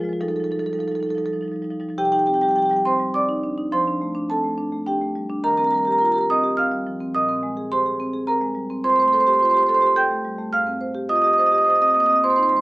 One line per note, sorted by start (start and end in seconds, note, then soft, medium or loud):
0.00 0.09 F3 medium
0.00 0.13 G#3 soft
0.00 0.19 G#4 medium
0.05 0.13 F4 soft
0.09 0.17 F3 soft
0.09 0.17 G#3 soft
0.13 0.17 F4 soft
0.21 0.31 F3 medium
0.21 0.29 G3 soft
0.21 0.29 D#4 soft
0.21 0.28 A4 medium
0.28 0.40 F3 soft
0.28 0.36 G3 soft
0.28 0.36 D#4 soft
0.28 0.36 A4 medium
0.36 0.46 G3 soft
0.36 0.44 D#4 soft
0.36 0.44 A4 medium
0.40 0.51 F3 soft
0.40 0.51 D#4 soft
0.40 0.52 A4 medium
0.46 0.56 G3 soft
0.51 0.60 F3 soft
0.51 0.59 D#4 soft
0.51 0.59 A4 medium
0.56 0.64 G3 soft
0.56 0.67 D#4 soft
0.56 0.66 A4 medium
0.60 0.70 F3 soft
0.64 0.73 G3 soft
0.64 0.75 D#4 soft
0.64 0.73 A4 medium
0.70 0.79 F3 soft
0.70 0.82 G3 soft
0.70 0.80 A4 medium
0.75 0.88 F3 soft
0.75 0.83 D#4 soft
0.80 0.91 G3 soft
0.80 0.91 D#4 soft
0.80 0.88 A4 medium
0.88 0.97 F3 soft
0.88 1.01 G3 soft
0.88 1.00 D#4 soft
0.88 0.95 A4 medium
0.95 1.06 F3 soft
0.95 1.03 A4 medium
1.00 1.09 G3 soft
1.00 1.09 D#4 soft
1.00 1.10 A4 medium
1.06 1.15 F3 soft
1.06 1.18 G3 soft
1.06 1.17 D#4 soft
1.10 1.18 A4 medium
1.15 1.24 F3 soft
1.15 1.27 G3 soft
1.15 1.26 D#4 soft
1.15 1.26 A4 medium
1.24 1.34 F3 soft
1.24 1.36 G3 soft
1.24 1.33 D#4 soft
1.24 1.35 A4 medium
1.33 1.43 F3 soft
1.33 1.45 G3 soft
1.33 1.41 D#4 soft
1.41 1.52 F3 soft
1.41 1.53 G3 soft
1.41 1.48 D#4 soft
1.48 1.62 F3 soft
1.48 1.56 D#4 soft
1.53 1.62 G3 soft
1.53 1.64 D#4 soft
1.62 1.70 F3 soft
1.62 1.71 G3 soft
1.62 1.72 D#4 soft
1.70 1.81 F3 soft
1.70 1.80 G3 soft
1.70 1.80 D#4 soft
1.80 1.90 F3 soft
1.80 1.89 G3 soft
1.80 1.89 D#4 soft
1.89 1.94 F3 soft
1.89 1.94 G3 soft
1.89 1.94 D#4 soft
1.98 3.68 C3 medium
1.98 2.05 G4 medium
1.98 2.05 G5 medium
2.05 2.12 G4 medium
2.05 2.12 G5 medium
2.12 2.36 D#4 medium
2.12 2.19 G4 medium
2.12 2.19 G5 medium
2.19 2.27 G4 medium
2.19 2.26 G5 medium
2.26 2.51 C4 soft
2.26 2.35 G4 medium
2.26 2.34 G5 medium
2.34 2.43 G4 medium
2.34 2.41 G5 medium
2.41 2.65 G3 medium
2.41 2.51 G4 medium
2.41 2.48 G5 medium
2.48 2.58 G4 medium
2.48 2.56 G5 medium
2.56 2.71 F3 soft
2.56 2.66 G4 medium
2.56 2.62 G5 medium
2.62 2.73 G4 medium
2.62 2.69 G5 medium
2.69 2.94 G3 soft
2.69 2.81 G4 medium
2.69 2.76 G5 medium
2.76 2.82 G5 medium
2.85 3.08 C4 medium
2.85 3.13 C5 medium
2.85 3.13 C6 medium
3.00 3.23 G3 medium
3.14 3.37 C4 medium
3.14 3.69 D5 medium
3.14 3.70 D6 medium
3.29 3.52 D#4 medium
3.44 3.58 D4 soft
3.58 3.72 D#4 medium
3.72 5.40 F3 medium
3.72 4.26 C5 medium
3.72 4.28 C6 medium
3.87 4.10 D4 soft
4.01 4.24 A3 soft
4.15 4.38 D4 medium
4.30 4.44 C4 soft
4.30 4.84 A4 medium
4.30 4.84 A5 medium
4.44 4.67 A3 soft
4.58 4.81 D4 soft
4.72 4.95 A3 medium
4.86 5.09 D4 medium
4.86 5.40 G4 medium
4.86 5.41 G5 medium
5.01 5.24 A3 medium
5.15 5.30 G3 soft
5.30 5.44 D4 medium
5.44 7.10 D#3 medium
5.44 5.52 A#4 medium
5.44 5.50 A#5 medium
5.50 5.60 A#4 soft
5.50 5.57 A#5 medium
5.57 5.81 C4 soft
5.57 5.67 A#4 medium
5.57 5.64 A#5 medium
5.64 5.74 A#4 soft
5.64 5.71 A#5 medium
5.71 5.95 G3 medium
5.71 5.83 A#4 medium
5.71 5.78 A#5 medium
5.78 5.85 A#5 medium
5.83 5.91 A#4 soft
5.83 5.92 A#5 medium
5.87 6.10 G4 medium
5.87 5.99 A#4 medium
5.92 5.98 A#5 medium
5.98 6.15 F4 soft
5.98 6.06 A#4 medium
5.98 6.05 A#5 medium
6.05 6.14 A#4 medium
6.05 6.12 A#5 medium
6.12 6.38 G4 medium
6.12 6.21 A#4 soft
6.12 6.18 A#5 medium
6.18 6.25 A#4 medium
6.18 6.26 A#5 medium
6.30 6.52 C4 medium
6.30 6.57 D#5 medium
6.30 6.57 D#6 medium
6.43 6.66 G4 medium
6.57 6.80 C4 medium
6.57 7.11 F5 medium
6.57 7.12 F6 medium
6.72 6.94 G3 medium
6.87 7.00 F3 soft
7.00 7.14 C4 medium
7.14 8.80 A#2 medium
7.14 7.67 D#5 medium
7.14 7.69 D#6 medium
7.29 7.51 C4 medium
7.43 7.65 G#3 medium
7.57 7.79 G#4 medium
7.72 7.85 G4 medium
7.72 8.24 C5 medium
7.72 8.25 C6 medium
7.86 8.08 G#4 medium
8.00 8.22 C4 medium
8.14 8.36 G#4 medium
8.27 8.50 C4 medium
8.27 8.80 A#4 medium
8.27 8.81 A#5 medium
8.41 8.64 G#3 medium
8.55 8.69 G3 soft
8.70 8.84 C4 medium
8.84 10.49 F2 medium
8.84 8.92 C5 medium
8.84 8.90 C6 medium
8.90 9.00 C5 medium
8.90 8.96 C6 medium
8.96 9.21 A3 medium
8.96 9.06 C5 medium
8.96 9.02 C6 medium
9.02 9.13 C5 medium
9.02 9.08 C6 medium
9.08 9.14 C6 medium
9.13 9.35 A4 medium
9.13 9.20 C5 medium
9.13 9.21 C6 medium
9.20 9.27 C5 medium
9.20 9.28 C6 medium
9.27 9.49 G4 medium
9.27 9.35 C5 medium
9.27 9.33 C6 medium
9.33 9.43 C5 medium
9.33 9.39 C6 medium
9.39 9.54 F4 soft
9.39 9.50 C5 medium
9.39 9.45 C6 medium
9.45 9.51 C6 medium
9.50 9.58 C5 medium
9.50 9.57 C6 medium
9.54 9.76 G4 medium
9.54 9.67 C5 medium
9.54 9.63 C6 medium
9.63 9.74 C5 medium
9.63 9.69 C6 medium
9.69 9.90 A4 medium
9.69 9.74 C6 medium
9.74 9.82 C5 medium
9.74 9.81 C6 medium
9.81 10.04 G4 medium
9.81 9.92 C5 medium
9.81 9.87 C6 medium
9.87 9.92 C6 medium
9.96 10.18 A4 medium
9.96 10.49 G5 medium
9.96 10.50 G6 medium
10.11 10.33 A3 medium
10.25 10.38 G3 soft
10.39 10.53 A3 medium
10.53 12.19 G#2 medium
10.53 11.06 F5 medium
10.53 11.07 F6 medium
10.67 10.89 C4 medium
10.81 11.04 C5 medium
10.95 11.18 G4 medium
11.09 11.24 F4 soft
11.09 11.16 D#5 medium
11.09 11.15 D#6 medium
11.15 11.24 D#5 medium
11.15 11.22 D#6 medium
11.22 11.47 G4 medium
11.22 11.33 D#5 medium
11.22 11.27 D#6 medium
11.27 11.34 D#6 medium
11.33 11.40 D#5 medium
11.33 11.39 D#6 medium
11.38 11.61 C5 medium
11.38 11.47 D#5 medium
11.38 11.46 D#6 medium
11.46 11.54 D#5 medium
11.46 11.52 D#6 medium
11.52 11.75 G4 medium
11.52 11.61 D#5 medium
11.52 11.58 D#6 medium
11.58 11.68 D#5 medium
11.58 11.64 D#6 medium
11.64 11.89 C5 medium
11.64 11.75 D#5 medium
11.64 11.70 D#6 medium
11.70 11.76 D#6 medium
11.75 11.82 D#5 medium
11.75 11.82 D#6 medium
11.81 12.03 C4 soft
11.81 11.90 D#5 medium
11.81 11.88 D#6 medium
11.88 11.96 D#5 medium
11.88 11.94 D#6 medium
11.94 12.09 A#3 soft
11.94 12.03 D#5 medium
11.94 12.00 D#6 medium
12.00 12.10 D#5 medium
12.00 12.06 D#6 medium
12.06 12.23 C4 soft
12.06 12.16 D#5 medium
12.06 12.13 D#6 medium
12.13 12.19 D#5 medium
12.13 12.19 D#6 medium
12.24 12.61 F2 medium
12.24 12.30 C5 medium
12.24 12.30 C6 medium
12.30 12.36 C5 medium
12.30 12.36 C6 medium
12.36 12.60 D#4 soft
12.36 12.43 C5 medium
12.36 12.43 C6 medium
12.43 12.50 C5 medium
12.43 12.49 C6 medium
12.49 12.61 G3 soft
12.49 12.57 C5 medium
12.49 12.56 C6 medium
12.56 12.61 C5 medium
12.56 12.61 C6 medium